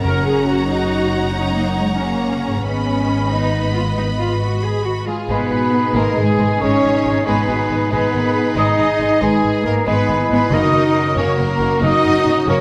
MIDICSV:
0, 0, Header, 1, 13, 480
1, 0, Start_track
1, 0, Tempo, 437956
1, 44, Time_signature, 12, 3, 24, 8
1, 8204, Tempo, 434468
1, 13861, End_track
2, 0, Start_track
2, 0, Title_t, "Flute section"
2, 0, Program_c, 0, 73
2, 5556, Note_on_c, 0, 80, 52
2, 5784, Note_off_c, 0, 80, 0
2, 5794, Note_on_c, 0, 83, 65
2, 6506, Note_on_c, 0, 82, 64
2, 6516, Note_off_c, 0, 83, 0
2, 6733, Note_on_c, 0, 80, 61
2, 6750, Note_off_c, 0, 82, 0
2, 7221, Note_on_c, 0, 85, 68
2, 7232, Note_off_c, 0, 80, 0
2, 7936, Note_off_c, 0, 85, 0
2, 7951, Note_on_c, 0, 83, 62
2, 8660, Note_off_c, 0, 83, 0
2, 8673, Note_on_c, 0, 83, 73
2, 9384, Note_off_c, 0, 83, 0
2, 9390, Note_on_c, 0, 87, 78
2, 9789, Note_off_c, 0, 87, 0
2, 10115, Note_on_c, 0, 80, 63
2, 10575, Note_on_c, 0, 82, 67
2, 10589, Note_off_c, 0, 80, 0
2, 10821, Note_on_c, 0, 83, 75
2, 10823, Note_off_c, 0, 82, 0
2, 11292, Note_off_c, 0, 83, 0
2, 11305, Note_on_c, 0, 83, 69
2, 11546, Note_off_c, 0, 83, 0
2, 11562, Note_on_c, 0, 87, 78
2, 12277, Note_off_c, 0, 87, 0
2, 12277, Note_on_c, 0, 85, 68
2, 12518, Note_off_c, 0, 85, 0
2, 12524, Note_on_c, 0, 82, 70
2, 12997, Note_off_c, 0, 82, 0
2, 13010, Note_on_c, 0, 87, 78
2, 13711, Note_off_c, 0, 87, 0
2, 13716, Note_on_c, 0, 85, 80
2, 13861, Note_off_c, 0, 85, 0
2, 13861, End_track
3, 0, Start_track
3, 0, Title_t, "Harp"
3, 0, Program_c, 1, 46
3, 0, Note_on_c, 1, 42, 39
3, 0, Note_on_c, 1, 61, 36
3, 0, Note_on_c, 1, 66, 36
3, 0, Note_on_c, 1, 70, 34
3, 0, Note_on_c, 1, 73, 33
3, 1405, Note_off_c, 1, 73, 0
3, 2705, Note_on_c, 1, 44, 33
3, 2757, Note_on_c, 1, 59, 28
3, 2830, Note_off_c, 1, 42, 0
3, 2853, Note_off_c, 1, 61, 0
3, 2853, Note_on_c, 1, 71, 28
3, 2879, Note_off_c, 1, 66, 0
3, 2903, Note_off_c, 1, 70, 0
3, 5723, Note_off_c, 1, 44, 0
3, 5796, Note_on_c, 1, 44, 44
3, 5919, Note_on_c, 1, 47, 28
3, 6024, Note_off_c, 1, 59, 0
3, 6037, Note_on_c, 1, 59, 43
3, 6252, Note_off_c, 1, 71, 0
3, 6265, Note_on_c, 1, 71, 35
3, 6510, Note_on_c, 1, 75, 41
3, 6640, Note_on_c, 1, 83, 37
3, 6743, Note_off_c, 1, 75, 0
3, 6756, Note_on_c, 1, 75, 37
3, 6868, Note_off_c, 1, 83, 0
3, 6881, Note_on_c, 1, 83, 41
3, 6986, Note_off_c, 1, 75, 0
3, 6999, Note_on_c, 1, 75, 40
3, 7114, Note_off_c, 1, 83, 0
3, 7128, Note_on_c, 1, 83, 43
3, 7231, Note_off_c, 1, 75, 0
3, 7245, Note_on_c, 1, 75, 41
3, 7349, Note_off_c, 1, 83, 0
3, 7362, Note_on_c, 1, 83, 42
3, 7466, Note_off_c, 1, 75, 0
3, 7479, Note_on_c, 1, 75, 43
3, 7585, Note_off_c, 1, 71, 0
3, 7598, Note_on_c, 1, 71, 39
3, 7818, Note_off_c, 1, 59, 0
3, 7831, Note_on_c, 1, 59, 34
3, 8067, Note_off_c, 1, 59, 0
3, 8081, Note_on_c, 1, 59, 40
3, 8306, Note_off_c, 1, 59, 0
3, 8319, Note_on_c, 1, 59, 33
3, 8541, Note_off_c, 1, 59, 0
3, 8554, Note_on_c, 1, 59, 42
3, 8659, Note_off_c, 1, 44, 0
3, 8672, Note_on_c, 1, 44, 42
3, 8899, Note_off_c, 1, 59, 0
3, 9133, Note_off_c, 1, 71, 0
3, 9147, Note_on_c, 1, 71, 33
3, 9380, Note_off_c, 1, 75, 0
3, 9394, Note_on_c, 1, 75, 46
3, 9509, Note_off_c, 1, 83, 0
3, 9522, Note_on_c, 1, 83, 38
3, 9634, Note_off_c, 1, 75, 0
3, 9647, Note_on_c, 1, 75, 43
3, 9750, Note_off_c, 1, 83, 0
3, 9764, Note_on_c, 1, 83, 43
3, 9867, Note_off_c, 1, 75, 0
3, 9984, Note_off_c, 1, 83, 0
3, 9997, Note_on_c, 1, 83, 46
3, 10209, Note_off_c, 1, 47, 0
3, 10218, Note_off_c, 1, 83, 0
3, 10231, Note_on_c, 1, 83, 46
3, 10355, Note_on_c, 1, 75, 43
3, 10477, Note_off_c, 1, 71, 0
3, 10490, Note_on_c, 1, 71, 48
3, 10726, Note_on_c, 1, 59, 36
3, 10950, Note_off_c, 1, 59, 0
3, 10963, Note_on_c, 1, 59, 43
3, 11190, Note_off_c, 1, 59, 0
3, 11204, Note_on_c, 1, 59, 39
3, 11322, Note_on_c, 1, 51, 41
3, 11428, Note_off_c, 1, 59, 0
3, 11441, Note_on_c, 1, 59, 45
3, 11552, Note_on_c, 1, 42, 48
3, 11571, Note_off_c, 1, 83, 0
3, 11572, Note_off_c, 1, 44, 0
3, 11574, Note_off_c, 1, 75, 0
3, 11579, Note_off_c, 1, 51, 0
3, 11579, Note_off_c, 1, 59, 0
3, 11581, Note_off_c, 1, 71, 0
3, 11677, Note_on_c, 1, 49, 41
3, 11796, Note_on_c, 1, 61, 51
3, 11914, Note_on_c, 1, 66, 43
3, 12034, Note_on_c, 1, 70, 42
3, 12156, Note_on_c, 1, 73, 46
3, 12280, Note_on_c, 1, 78, 51
3, 12407, Note_on_c, 1, 82, 43
3, 12513, Note_off_c, 1, 78, 0
3, 12526, Note_on_c, 1, 78, 45
3, 12625, Note_off_c, 1, 82, 0
3, 12741, Note_off_c, 1, 78, 0
3, 12754, Note_on_c, 1, 78, 52
3, 12879, Note_on_c, 1, 82, 51
3, 12990, Note_off_c, 1, 78, 0
3, 13003, Note_on_c, 1, 78, 47
3, 13116, Note_off_c, 1, 82, 0
3, 13129, Note_on_c, 1, 82, 50
3, 13228, Note_off_c, 1, 78, 0
3, 13241, Note_on_c, 1, 78, 48
3, 13358, Note_off_c, 1, 73, 0
3, 13371, Note_on_c, 1, 73, 55
3, 13484, Note_off_c, 1, 66, 0
3, 13497, Note_on_c, 1, 66, 45
3, 13597, Note_off_c, 1, 61, 0
3, 13610, Note_on_c, 1, 61, 39
3, 13721, Note_off_c, 1, 49, 0
3, 13734, Note_on_c, 1, 49, 48
3, 13846, Note_off_c, 1, 61, 0
3, 13861, Note_off_c, 1, 42, 0
3, 13861, Note_off_c, 1, 49, 0
3, 13861, Note_off_c, 1, 66, 0
3, 13861, Note_off_c, 1, 70, 0
3, 13861, Note_off_c, 1, 73, 0
3, 13861, Note_off_c, 1, 78, 0
3, 13861, Note_off_c, 1, 82, 0
3, 13861, End_track
4, 0, Start_track
4, 0, Title_t, "Trumpet"
4, 0, Program_c, 2, 56
4, 5560, Note_on_c, 2, 68, 42
4, 5669, Note_off_c, 2, 68, 0
4, 5805, Note_on_c, 2, 71, 54
4, 6516, Note_on_c, 2, 70, 59
4, 6532, Note_off_c, 2, 71, 0
4, 6747, Note_off_c, 2, 70, 0
4, 6753, Note_on_c, 2, 68, 54
4, 7256, Note_on_c, 2, 73, 67
4, 7272, Note_off_c, 2, 68, 0
4, 7964, Note_off_c, 2, 73, 0
4, 7970, Note_on_c, 2, 71, 46
4, 8673, Note_off_c, 2, 71, 0
4, 8684, Note_on_c, 2, 71, 54
4, 9390, Note_off_c, 2, 71, 0
4, 9409, Note_on_c, 2, 75, 67
4, 10123, Note_on_c, 2, 68, 59
4, 10139, Note_off_c, 2, 75, 0
4, 10591, Note_on_c, 2, 70, 55
4, 10607, Note_off_c, 2, 68, 0
4, 10835, Note_on_c, 2, 71, 54
4, 10852, Note_off_c, 2, 70, 0
4, 11305, Note_off_c, 2, 71, 0
4, 11311, Note_on_c, 2, 71, 62
4, 11555, Note_on_c, 2, 75, 69
4, 11572, Note_off_c, 2, 71, 0
4, 12262, Note_off_c, 2, 75, 0
4, 12269, Note_on_c, 2, 73, 54
4, 12515, Note_on_c, 2, 70, 60
4, 12531, Note_off_c, 2, 73, 0
4, 12989, Note_off_c, 2, 70, 0
4, 12996, Note_on_c, 2, 75, 76
4, 13458, Note_off_c, 2, 75, 0
4, 13727, Note_on_c, 2, 73, 59
4, 13861, Note_off_c, 2, 73, 0
4, 13861, End_track
5, 0, Start_track
5, 0, Title_t, "Violin section"
5, 0, Program_c, 3, 48
5, 41, Note_on_c, 3, 82, 43
5, 2862, Note_off_c, 3, 82, 0
5, 2921, Note_on_c, 3, 83, 38
5, 5528, Note_off_c, 3, 83, 0
5, 5561, Note_on_c, 3, 68, 36
5, 5786, Note_off_c, 3, 68, 0
5, 5798, Note_on_c, 3, 71, 46
5, 6518, Note_off_c, 3, 71, 0
5, 6531, Note_on_c, 3, 70, 53
5, 6766, Note_on_c, 3, 68, 50
5, 6768, Note_off_c, 3, 70, 0
5, 7248, Note_off_c, 3, 68, 0
5, 7250, Note_on_c, 3, 73, 66
5, 7951, Note_off_c, 3, 73, 0
5, 7969, Note_on_c, 3, 71, 45
5, 8672, Note_off_c, 3, 71, 0
5, 8698, Note_on_c, 3, 71, 51
5, 9397, Note_off_c, 3, 71, 0
5, 9410, Note_on_c, 3, 75, 53
5, 10127, Note_off_c, 3, 75, 0
5, 10129, Note_on_c, 3, 68, 60
5, 10605, Note_on_c, 3, 70, 53
5, 10606, Note_off_c, 3, 68, 0
5, 10693, Note_off_c, 3, 70, 0
5, 10835, Note_on_c, 3, 71, 57
5, 11307, Note_off_c, 3, 71, 0
5, 11335, Note_on_c, 3, 71, 58
5, 11562, Note_off_c, 3, 71, 0
5, 11568, Note_on_c, 3, 75, 62
5, 12271, Note_on_c, 3, 73, 56
5, 12281, Note_off_c, 3, 75, 0
5, 12510, Note_off_c, 3, 73, 0
5, 12518, Note_on_c, 3, 70, 56
5, 13004, Note_off_c, 3, 70, 0
5, 13013, Note_on_c, 3, 75, 76
5, 13713, Note_off_c, 3, 75, 0
5, 13725, Note_on_c, 3, 73, 60
5, 13861, Note_off_c, 3, 73, 0
5, 13861, End_track
6, 0, Start_track
6, 0, Title_t, "French horn section"
6, 0, Program_c, 4, 60
6, 5804, Note_on_c, 4, 68, 48
6, 6026, Note_off_c, 4, 68, 0
6, 6031, Note_on_c, 4, 66, 44
6, 6276, Note_off_c, 4, 66, 0
6, 6287, Note_on_c, 4, 68, 45
6, 6394, Note_off_c, 4, 68, 0
6, 6516, Note_on_c, 4, 71, 61
6, 7230, Note_off_c, 4, 71, 0
6, 7251, Note_on_c, 4, 68, 54
6, 7966, Note_off_c, 4, 68, 0
6, 7967, Note_on_c, 4, 71, 51
6, 8074, Note_off_c, 4, 71, 0
6, 8205, Note_on_c, 4, 66, 53
6, 8313, Note_off_c, 4, 66, 0
6, 8450, Note_on_c, 4, 68, 40
6, 8557, Note_off_c, 4, 68, 0
6, 8686, Note_on_c, 4, 71, 53
6, 8917, Note_on_c, 4, 70, 53
6, 8920, Note_off_c, 4, 71, 0
6, 9156, Note_on_c, 4, 68, 57
6, 9160, Note_off_c, 4, 70, 0
6, 10101, Note_off_c, 4, 68, 0
6, 10118, Note_on_c, 4, 71, 59
6, 10839, Note_off_c, 4, 71, 0
6, 10846, Note_on_c, 4, 75, 51
6, 11546, Note_off_c, 4, 75, 0
6, 11553, Note_on_c, 4, 66, 54
6, 12250, Note_on_c, 4, 70, 63
6, 12273, Note_off_c, 4, 66, 0
6, 12976, Note_off_c, 4, 70, 0
6, 12999, Note_on_c, 4, 66, 65
6, 13720, Note_off_c, 4, 66, 0
6, 13725, Note_on_c, 4, 70, 62
6, 13861, Note_off_c, 4, 70, 0
6, 13861, End_track
7, 0, Start_track
7, 0, Title_t, "Oboe"
7, 0, Program_c, 5, 68
7, 5804, Note_on_c, 5, 68, 52
7, 7919, Note_off_c, 5, 68, 0
7, 7961, Note_on_c, 5, 68, 50
7, 8668, Note_off_c, 5, 68, 0
7, 8686, Note_on_c, 5, 68, 47
7, 9391, Note_off_c, 5, 68, 0
7, 9401, Note_on_c, 5, 68, 53
7, 10108, Note_off_c, 5, 68, 0
7, 10122, Note_on_c, 5, 68, 50
7, 10827, Note_off_c, 5, 68, 0
7, 10842, Note_on_c, 5, 68, 48
7, 11568, Note_on_c, 5, 70, 58
7, 11584, Note_off_c, 5, 68, 0
7, 12280, Note_off_c, 5, 70, 0
7, 12289, Note_on_c, 5, 70, 51
7, 13398, Note_off_c, 5, 70, 0
7, 13726, Note_on_c, 5, 70, 56
7, 13861, Note_off_c, 5, 70, 0
7, 13861, End_track
8, 0, Start_track
8, 0, Title_t, "Clarinet"
8, 0, Program_c, 6, 71
8, 5807, Note_on_c, 6, 63, 49
8, 7921, Note_off_c, 6, 63, 0
8, 7951, Note_on_c, 6, 63, 48
8, 8662, Note_off_c, 6, 63, 0
8, 8676, Note_on_c, 6, 63, 51
8, 9386, Note_off_c, 6, 63, 0
8, 9395, Note_on_c, 6, 63, 51
8, 10105, Note_off_c, 6, 63, 0
8, 10120, Note_on_c, 6, 63, 55
8, 10826, Note_off_c, 6, 63, 0
8, 10838, Note_on_c, 6, 63, 45
8, 11191, Note_off_c, 6, 63, 0
8, 11199, Note_on_c, 6, 64, 54
8, 11558, Note_on_c, 6, 66, 49
8, 11575, Note_off_c, 6, 64, 0
8, 12250, Note_off_c, 6, 66, 0
8, 12257, Note_on_c, 6, 66, 58
8, 13382, Note_off_c, 6, 66, 0
8, 13743, Note_on_c, 6, 66, 59
8, 13861, Note_off_c, 6, 66, 0
8, 13861, End_track
9, 0, Start_track
9, 0, Title_t, "Cello section"
9, 0, Program_c, 7, 48
9, 36, Note_on_c, 7, 61, 54
9, 740, Note_off_c, 7, 61, 0
9, 750, Note_on_c, 7, 63, 54
9, 1453, Note_off_c, 7, 63, 0
9, 1475, Note_on_c, 7, 61, 55
9, 1707, Note_off_c, 7, 61, 0
9, 1711, Note_on_c, 7, 58, 42
9, 1944, Note_off_c, 7, 58, 0
9, 1953, Note_on_c, 7, 56, 42
9, 2040, Note_off_c, 7, 56, 0
9, 2185, Note_on_c, 7, 58, 52
9, 2892, Note_off_c, 7, 58, 0
9, 2902, Note_on_c, 7, 59, 45
9, 3567, Note_off_c, 7, 59, 0
9, 3617, Note_on_c, 7, 63, 49
9, 4074, Note_off_c, 7, 63, 0
9, 4106, Note_on_c, 7, 65, 40
9, 4194, Note_off_c, 7, 65, 0
9, 4350, Note_on_c, 7, 63, 45
9, 4438, Note_off_c, 7, 63, 0
9, 4589, Note_on_c, 7, 65, 49
9, 4830, Note_off_c, 7, 65, 0
9, 4837, Note_on_c, 7, 66, 52
9, 5075, Note_off_c, 7, 66, 0
9, 5079, Note_on_c, 7, 68, 57
9, 5311, Note_on_c, 7, 66, 48
9, 5322, Note_off_c, 7, 68, 0
9, 5551, Note_on_c, 7, 65, 43
9, 5557, Note_on_c, 7, 56, 43
9, 5559, Note_off_c, 7, 66, 0
9, 5645, Note_off_c, 7, 56, 0
9, 5796, Note_on_c, 7, 59, 51
9, 5798, Note_off_c, 7, 65, 0
9, 6503, Note_off_c, 7, 59, 0
9, 6517, Note_on_c, 7, 58, 56
9, 6758, Note_on_c, 7, 56, 54
9, 6761, Note_off_c, 7, 58, 0
9, 7229, Note_on_c, 7, 61, 56
9, 7235, Note_off_c, 7, 56, 0
9, 7940, Note_off_c, 7, 61, 0
9, 7945, Note_on_c, 7, 59, 51
9, 8660, Note_off_c, 7, 59, 0
9, 8673, Note_on_c, 7, 59, 54
9, 9384, Note_off_c, 7, 59, 0
9, 9405, Note_on_c, 7, 63, 65
9, 10110, Note_off_c, 7, 63, 0
9, 10128, Note_on_c, 7, 56, 58
9, 10600, Note_on_c, 7, 58, 55
9, 10605, Note_off_c, 7, 56, 0
9, 10840, Note_off_c, 7, 58, 0
9, 10844, Note_on_c, 7, 59, 58
9, 11304, Note_off_c, 7, 59, 0
9, 11317, Note_on_c, 7, 59, 52
9, 11552, Note_off_c, 7, 59, 0
9, 11561, Note_on_c, 7, 63, 73
9, 12263, Note_off_c, 7, 63, 0
9, 12276, Note_on_c, 7, 61, 58
9, 12513, Note_off_c, 7, 61, 0
9, 12517, Note_on_c, 7, 58, 65
9, 12993, Note_on_c, 7, 63, 75
9, 13004, Note_off_c, 7, 58, 0
9, 13711, Note_on_c, 7, 61, 55
9, 13717, Note_off_c, 7, 63, 0
9, 13861, Note_off_c, 7, 61, 0
9, 13861, End_track
10, 0, Start_track
10, 0, Title_t, "Viola section"
10, 0, Program_c, 8, 48
10, 40, Note_on_c, 8, 70, 68
10, 263, Note_off_c, 8, 70, 0
10, 282, Note_on_c, 8, 68, 64
10, 511, Note_on_c, 8, 66, 67
10, 515, Note_off_c, 8, 68, 0
10, 738, Note_off_c, 8, 66, 0
10, 752, Note_on_c, 8, 66, 67
10, 1454, Note_off_c, 8, 66, 0
10, 1459, Note_on_c, 8, 63, 58
10, 2166, Note_off_c, 8, 63, 0
10, 2185, Note_on_c, 8, 61, 49
10, 2885, Note_off_c, 8, 61, 0
10, 2898, Note_on_c, 8, 61, 56
10, 3612, Note_off_c, 8, 61, 0
10, 3626, Note_on_c, 8, 59, 44
10, 5078, Note_off_c, 8, 59, 0
10, 5565, Note_on_c, 8, 56, 37
10, 5653, Note_off_c, 8, 56, 0
10, 5812, Note_on_c, 8, 59, 51
10, 6511, Note_off_c, 8, 59, 0
10, 6524, Note_on_c, 8, 58, 59
10, 6761, Note_on_c, 8, 56, 53
10, 6764, Note_off_c, 8, 58, 0
10, 7242, Note_on_c, 8, 61, 57
10, 7246, Note_off_c, 8, 56, 0
10, 7947, Note_off_c, 8, 61, 0
10, 7963, Note_on_c, 8, 59, 45
10, 8669, Note_off_c, 8, 59, 0
10, 8685, Note_on_c, 8, 59, 59
10, 9390, Note_off_c, 8, 59, 0
10, 9402, Note_on_c, 8, 63, 58
10, 10109, Note_off_c, 8, 63, 0
10, 10124, Note_on_c, 8, 56, 49
10, 10594, Note_off_c, 8, 56, 0
10, 10614, Note_on_c, 8, 58, 59
10, 10702, Note_off_c, 8, 58, 0
10, 10852, Note_on_c, 8, 59, 60
10, 11316, Note_off_c, 8, 59, 0
10, 11333, Note_on_c, 8, 59, 56
10, 11421, Note_off_c, 8, 59, 0
10, 11561, Note_on_c, 8, 63, 74
10, 12262, Note_off_c, 8, 63, 0
10, 12273, Note_on_c, 8, 61, 53
10, 12511, Note_off_c, 8, 61, 0
10, 12513, Note_on_c, 8, 58, 60
10, 12992, Note_off_c, 8, 58, 0
10, 13010, Note_on_c, 8, 63, 62
10, 13725, Note_on_c, 8, 61, 64
10, 13726, Note_off_c, 8, 63, 0
10, 13861, Note_off_c, 8, 61, 0
10, 13861, End_track
11, 0, Start_track
11, 0, Title_t, "Violin section"
11, 0, Program_c, 10, 48
11, 51, Note_on_c, 10, 73, 45
11, 53, Note_on_c, 10, 78, 48
11, 2867, Note_off_c, 10, 73, 0
11, 2911, Note_on_c, 10, 75, 40
11, 2912, Note_off_c, 10, 78, 0
11, 2912, Note_on_c, 10, 71, 39
11, 5586, Note_off_c, 10, 71, 0
11, 5586, Note_off_c, 10, 75, 0
11, 5804, Note_on_c, 10, 63, 45
11, 5808, Note_on_c, 10, 56, 49
11, 6029, Note_off_c, 10, 56, 0
11, 6040, Note_on_c, 10, 56, 31
11, 6127, Note_off_c, 10, 56, 0
11, 6520, Note_on_c, 10, 56, 50
11, 6745, Note_off_c, 10, 56, 0
11, 6770, Note_on_c, 10, 56, 45
11, 6858, Note_off_c, 10, 56, 0
11, 7014, Note_on_c, 10, 56, 43
11, 7102, Note_off_c, 10, 56, 0
11, 7254, Note_on_c, 10, 56, 46
11, 7473, Note_off_c, 10, 56, 0
11, 7501, Note_on_c, 10, 56, 36
11, 7589, Note_off_c, 10, 56, 0
11, 7732, Note_on_c, 10, 56, 42
11, 7819, Note_off_c, 10, 56, 0
11, 7958, Note_on_c, 10, 56, 56
11, 8184, Note_off_c, 10, 56, 0
11, 8199, Note_on_c, 10, 56, 43
11, 8287, Note_off_c, 10, 56, 0
11, 8435, Note_on_c, 10, 56, 46
11, 8523, Note_off_c, 10, 56, 0
11, 8664, Note_on_c, 10, 56, 48
11, 8896, Note_off_c, 10, 56, 0
11, 8911, Note_on_c, 10, 56, 32
11, 8999, Note_off_c, 10, 56, 0
11, 9388, Note_on_c, 10, 56, 59
11, 9619, Note_off_c, 10, 56, 0
11, 9643, Note_on_c, 10, 56, 41
11, 9732, Note_off_c, 10, 56, 0
11, 9878, Note_on_c, 10, 56, 40
11, 9967, Note_off_c, 10, 56, 0
11, 10105, Note_on_c, 10, 56, 50
11, 10337, Note_off_c, 10, 56, 0
11, 10364, Note_on_c, 10, 56, 41
11, 10452, Note_off_c, 10, 56, 0
11, 10601, Note_on_c, 10, 56, 42
11, 10689, Note_off_c, 10, 56, 0
11, 10834, Note_on_c, 10, 56, 54
11, 11060, Note_off_c, 10, 56, 0
11, 11084, Note_on_c, 10, 56, 44
11, 11172, Note_off_c, 10, 56, 0
11, 11335, Note_on_c, 10, 56, 53
11, 11423, Note_off_c, 10, 56, 0
11, 11514, Note_off_c, 10, 63, 0
11, 11567, Note_on_c, 10, 66, 50
11, 11568, Note_on_c, 10, 58, 51
11, 11785, Note_off_c, 10, 58, 0
11, 11813, Note_on_c, 10, 58, 34
11, 11901, Note_off_c, 10, 58, 0
11, 12287, Note_on_c, 10, 58, 68
11, 12507, Note_off_c, 10, 58, 0
11, 12544, Note_on_c, 10, 58, 50
11, 12632, Note_off_c, 10, 58, 0
11, 12780, Note_on_c, 10, 58, 52
11, 12868, Note_off_c, 10, 58, 0
11, 13020, Note_on_c, 10, 58, 61
11, 13236, Note_off_c, 10, 58, 0
11, 13263, Note_on_c, 10, 58, 53
11, 13351, Note_off_c, 10, 58, 0
11, 13511, Note_on_c, 10, 58, 44
11, 13599, Note_off_c, 10, 58, 0
11, 13736, Note_on_c, 10, 58, 60
11, 13861, Note_off_c, 10, 58, 0
11, 13861, Note_off_c, 10, 66, 0
11, 13861, End_track
12, 0, Start_track
12, 0, Title_t, "Timpani"
12, 0, Program_c, 11, 47
12, 47, Note_on_c, 11, 42, 52
12, 716, Note_off_c, 11, 42, 0
12, 13861, End_track
13, 0, Start_track
13, 0, Title_t, "Double bass section"
13, 0, Program_c, 12, 48
13, 45, Note_on_c, 12, 30, 52
13, 2864, Note_off_c, 12, 30, 0
13, 2909, Note_on_c, 12, 32, 48
13, 5585, Note_off_c, 12, 32, 0
13, 5799, Note_on_c, 12, 32, 51
13, 5887, Note_off_c, 12, 32, 0
13, 6038, Note_on_c, 12, 32, 38
13, 6125, Note_off_c, 12, 32, 0
13, 6513, Note_on_c, 12, 32, 53
13, 6601, Note_off_c, 12, 32, 0
13, 6757, Note_on_c, 12, 32, 39
13, 6845, Note_off_c, 12, 32, 0
13, 7004, Note_on_c, 12, 32, 42
13, 7092, Note_off_c, 12, 32, 0
13, 7256, Note_on_c, 12, 32, 56
13, 7344, Note_off_c, 12, 32, 0
13, 7491, Note_on_c, 12, 32, 41
13, 7579, Note_off_c, 12, 32, 0
13, 7732, Note_on_c, 12, 32, 41
13, 7820, Note_off_c, 12, 32, 0
13, 7977, Note_on_c, 12, 32, 57
13, 8064, Note_off_c, 12, 32, 0
13, 8205, Note_on_c, 12, 32, 40
13, 8294, Note_off_c, 12, 32, 0
13, 8447, Note_on_c, 12, 32, 41
13, 8535, Note_off_c, 12, 32, 0
13, 8689, Note_on_c, 12, 32, 56
13, 8777, Note_off_c, 12, 32, 0
13, 8925, Note_on_c, 12, 32, 41
13, 9013, Note_off_c, 12, 32, 0
13, 9401, Note_on_c, 12, 32, 54
13, 9489, Note_off_c, 12, 32, 0
13, 9643, Note_on_c, 12, 32, 43
13, 9731, Note_off_c, 12, 32, 0
13, 9878, Note_on_c, 12, 32, 48
13, 9966, Note_off_c, 12, 32, 0
13, 10117, Note_on_c, 12, 32, 56
13, 10205, Note_off_c, 12, 32, 0
13, 10358, Note_on_c, 12, 32, 43
13, 10447, Note_off_c, 12, 32, 0
13, 10597, Note_on_c, 12, 32, 48
13, 10685, Note_off_c, 12, 32, 0
13, 10837, Note_on_c, 12, 32, 65
13, 10926, Note_off_c, 12, 32, 0
13, 11077, Note_on_c, 12, 32, 43
13, 11165, Note_off_c, 12, 32, 0
13, 11320, Note_on_c, 12, 32, 40
13, 11409, Note_off_c, 12, 32, 0
13, 11547, Note_on_c, 12, 30, 65
13, 11636, Note_off_c, 12, 30, 0
13, 11788, Note_on_c, 12, 30, 47
13, 11876, Note_off_c, 12, 30, 0
13, 12267, Note_on_c, 12, 30, 63
13, 12356, Note_off_c, 12, 30, 0
13, 12511, Note_on_c, 12, 30, 46
13, 12599, Note_off_c, 12, 30, 0
13, 12754, Note_on_c, 12, 30, 58
13, 12843, Note_off_c, 12, 30, 0
13, 12996, Note_on_c, 12, 30, 69
13, 13084, Note_off_c, 12, 30, 0
13, 13251, Note_on_c, 12, 30, 47
13, 13340, Note_off_c, 12, 30, 0
13, 13478, Note_on_c, 12, 30, 50
13, 13567, Note_off_c, 12, 30, 0
13, 13715, Note_on_c, 12, 30, 63
13, 13804, Note_off_c, 12, 30, 0
13, 13861, End_track
0, 0, End_of_file